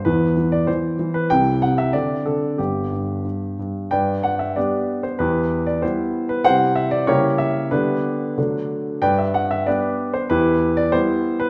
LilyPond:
<<
  \new Staff \with { instrumentName = "Grand piano" } { \time 2/4 \key g \major \tempo 4 = 95 << { b'8. d''16 c''8. b'16 | g''8 fis''16 e''16 d''8 a'8 | g'4. r8 | <b' d'' g''>8 fis''16 e''16 <g' b' d''>8. c''16 |
<e' g' b'>8. d''16 c''8. b'16 | <c'' fis''>8 e''16 d''16 <g' ais' cis''>8 e''8 | <d' g' b'>4 r4 | <b' d'' g''>16 e''16 fis''16 e''16 <g' b' d''>8. c''16 |
<e' g' b'>8. d''16 c''8. b'16 | } \\ { <b e'>2 | <c' e'>4 <c' d'>4 | <b d'>2 | r2 |
r2 | r2 | r2 | r2 |
r2 | } >> }
  \new Staff \with { instrumentName = "Grand piano" } { \clef bass \time 2/4 \key g \major <e, e>8 e8 e8 e8 | <c, c>8 c8 d8 d8 | <g,, g,>8 g,8 g,8 g,8 | g,4 <g b d'>4 |
e,4 <g b e'>4 | <c g c' e'>4 <cis g ais e'>4 | <d g b>4 <d fis a d'>4 | g,4 <g b d'>4 |
e,4 <g b e'>4 | }
>>